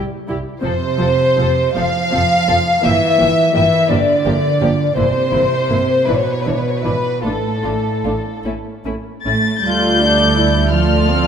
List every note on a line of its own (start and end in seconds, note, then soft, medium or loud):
0.28 0.38 C2 medium
0.28 0.36 G3 medium
0.28 0.36 E4 medium
0.28 0.38 G4 medium
0.61 0.73 F1 medium
0.61 0.70 F3 medium
0.61 0.69 C4 medium
0.61 1.73 C5 medium
0.65 1.74 C3 medium
0.65 0.74 A4 medium
0.98 1.06 F3 medium
0.98 1.06 C4 soft
0.98 1.08 A4 medium
1.02 1.10 F1 medium
1.36 1.44 F3 soft
1.36 1.44 C4 soft
1.36 1.48 A4 soft
1.40 1.48 F1 medium
1.75 1.87 F1 medium
1.75 1.83 F3 medium
1.75 2.85 F3 medium
1.75 1.83 C4 medium
1.75 1.86 A4 soft
1.75 2.84 F5 medium
2.11 2.19 F3 medium
2.11 2.19 C4 soft
2.11 2.21 A4 medium
2.16 2.24 F1 medium
2.47 2.58 F1 medium
2.47 2.55 F3 medium
2.47 2.56 C4 medium
2.47 2.56 A4 medium
2.82 2.94 G1 medium
2.82 3.53 E3 medium
2.82 2.90 F3 soft
2.82 2.91 A#3 medium
2.82 2.91 G4 medium
2.82 3.54 E5 medium
3.17 3.25 F3 soft
3.17 3.26 A#3 soft
3.17 3.28 G4 soft
3.22 3.30 G1 soft
3.53 3.65 G1 medium
3.53 3.89 E3 medium
3.53 3.61 F3 soft
3.53 3.61 A#3 soft
3.53 3.63 G4 soft
3.53 3.90 E5 medium
3.89 3.99 G1 medium
3.89 4.97 D3 medium
3.89 3.98 F3 soft
3.89 3.97 A#3 medium
3.89 3.98 G4 medium
3.89 4.97 D5 medium
4.25 4.34 G1 medium
4.25 4.33 F3 soft
4.25 4.33 A#3 soft
4.25 4.34 G4 medium
4.61 4.70 G1 medium
4.61 4.69 F3 medium
4.61 4.69 A#3 medium
4.61 4.70 G4 soft
4.96 5.06 G1 medium
4.96 6.05 C3 medium
4.96 5.05 E3 medium
4.96 5.05 A#3 soft
4.96 5.04 E4 medium
4.96 6.05 C5 medium
5.31 5.41 G1 soft
5.31 5.41 E3 soft
5.31 5.41 A#3 soft
5.31 5.39 E4 soft
5.68 5.78 G1 medium
5.68 5.78 E3 soft
5.68 5.78 A#3 soft
5.68 5.76 E4 soft
6.05 6.16 G#1 soft
6.05 7.24 B2 medium
6.05 6.16 E3 soft
6.05 6.16 D4 soft
6.05 6.13 E4 medium
6.05 6.16 B4 medium
6.16 6.25 C#5 medium
6.25 6.33 B4 medium
6.32 6.41 C#5 medium
6.40 6.52 E4 soft
6.40 6.50 B4 medium
6.46 6.55 G#1 soft
6.46 6.55 E3 soft
6.46 6.54 D4 soft
6.46 6.58 C#5 soft
6.59 6.68 B4 medium
6.69 6.77 C#5 medium
6.76 7.24 B4 medium
6.82 6.93 G#1 soft
6.82 6.92 E3 soft
6.82 6.92 D4 soft
6.82 6.90 E4 soft
7.21 7.32 A1 medium
7.21 8.45 A2 medium
7.21 7.33 A3 soft
7.21 7.33 D4 soft
7.21 7.29 F4 soft
7.21 8.43 A4 medium
7.62 7.72 A1 soft
7.62 7.72 A3 soft
7.62 7.72 D4 soft
7.62 7.70 F4 soft
8.04 8.13 A1 soft
8.04 8.13 A3 soft
8.04 8.13 D4 soft
8.04 8.12 F4 soft
8.44 8.52 A1 soft
8.44 8.53 A3 soft
8.44 8.53 C#4 soft
8.44 8.53 E4 soft
8.85 8.93 A1 soft
8.85 8.94 A3 soft
8.85 8.93 C#4 soft
8.85 8.94 E4 soft
9.25 9.34 A1 soft
9.25 9.61 A3 medium
9.25 9.33 A3 soft
9.25 9.33 C#4 soft
9.25 9.34 E4 soft
9.25 9.61 A6 medium
9.63 11.27 D2 medium
9.63 10.71 G3 medium
9.63 10.69 A3 medium
9.63 9.98 F4 medium
9.63 10.69 A4 medium
9.63 11.27 D5 medium
9.63 10.72 G6 medium
10.01 10.37 D4 medium
10.36 10.72 E4 medium
10.72 11.27 F3 medium
10.72 11.07 A3 medium
10.72 11.27 F4 medium
10.72 11.27 A4 medium
10.72 11.27 F6 medium
11.08 11.27 C4 medium